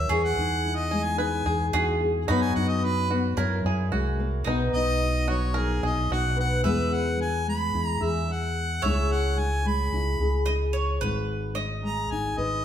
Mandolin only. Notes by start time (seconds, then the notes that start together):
Already playing: A#4
0.09 G#4
1.73 G#4
2.28 F#4
3.37 E4
4.44 D#4
6.64 B4
8.82 C#5
10.46 D#5
10.73 C#5
11.01 B4
11.55 D#5